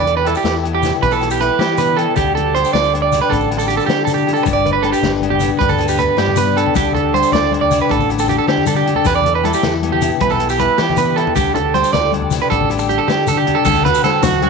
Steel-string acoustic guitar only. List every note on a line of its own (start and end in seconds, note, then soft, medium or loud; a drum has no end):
0.00 1.02 E3 medium
0.07 0.45 A4 medium
0.27 0.82 E4 medium
0.45 1.59 G3 medium
0.45 1.22 A4 medium
0.64 1.77 B3 soft
0.83 1.40 E4 medium
1.03 2.15 E3 medium
1.23 1.60 G4 medium
1.41 1.98 E4 soft
1.60 2.75 G3 medium
1.60 2.37 G4 medium
1.79 2.14 B3 medium
1.99 2.15 E4 soft
2.17 3.31 D3 medium
2.38 2.56 G4 medium
2.56 2.75 G4 medium
2.75 3.89 G3 medium
2.75 3.13 A4 soft
2.95 4.85 D4 soft
3.14 3.52 G4 medium
3.32 4.44 D3 medium
3.53 3.71 G4 soft
3.72 3.90 G4 medium
3.89 5.04 G3 medium
3.89 4.28 A4 medium
4.28 4.65 G4 medium
4.47 5.59 G2 medium
4.65 5.03 B4 medium
4.85 5.42 D4 soft
5.04 6.16 G3 medium
5.04 5.78 B4 medium
5.23 6.35 B3 medium
5.42 5.99 D4 medium
5.60 6.76 G2 medium
5.79 6.18 B4 medium
6.17 6.74 G3 medium
6.17 6.73 D5 medium
6.36 6.73 B3 medium
6.57 6.74 D4 soft
6.74 7.89 D3 medium
6.74 7.34 G3 medium
6.74 7.51 D4 medium
6.74 6.95 G4 medium
6.95 7.35 G4 soft
7.34 8.47 G3 medium
7.34 7.72 A4 soft
7.53 8.67 D4 soft
7.72 8.09 G4 medium
7.90 9.03 D3 medium
8.10 8.29 G4 medium
8.29 8.48 G4 medium
8.47 9.29 G3 medium
8.47 8.87 A4 medium
8.68 9.04 D4 medium
8.88 9.25 G4 medium
9.05 10.20 E3 medium
9.26 9.63 A4 medium
9.45 10.01 E4 medium
9.63 10.40 A4 medium
9.63 muted steel-string acoustic guitar stroke medium
9.84 10.96 B3 medium
10.02 10.59 E4 medium
10.22 11.34 E3 medium
10.43 10.78 G4 medium
10.61 11.15 E4 medium
10.78 11.33 G3 medium
10.78 11.55 G4 medium
10.97 11.33 B3 medium
11.16 11.33 E4 soft
11.36 12.49 D3 medium
11.56 11.74 G4 medium
11.75 11.94 G4 medium
11.94 13.07 G3 medium
11.94 12.31 A4 soft
12.13 13.26 D4 soft
12.31 12.69 G4 medium
12.50 13.63 D3 medium
12.70 12.89 G4 medium
13.08 13.63 G3 medium
13.08 13.46 A4 medium
13.27 13.63 D4 medium
13.47 13.66 G4 medium
13.65 14.50 D3 medium
13.85 14.50 F#4 medium
14.04 14.50 C5 medium
14.23 14.50 F#3 medium
14.43 14.50 D4 medium